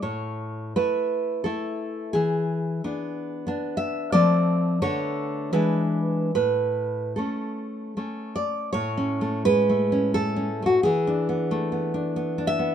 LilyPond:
\new Staff \with { instrumentName = "Nylon-string guitar" } { \time 3/4 \key a \major \tempo 4 = 87 << { cis''4 b'4 a'4 | gis'2 r8 e''8 | d''4 cis''4 b'4 | b'4 a'4 r8 d''8 |
cis''4 b'4 a'8. fis'16 | gis'2 r8 e''8 | } \\ { a,4 <a e'>4 <a e'>4 | e4 <b d'>4 <b d'>4 | <f a c'>4 <d a b>4 <e gis d'>4 | a,4 <a cis'>4 <a cis'>4 |
\tuplet 3/2 { a,8 cis'8 a8 gis8 a8 cis'8 a8 cis'8 a8 } | \tuplet 3/2 { e8 d'8 b8 a8 b8 d'8 b8 d'8 b8 } | } >> }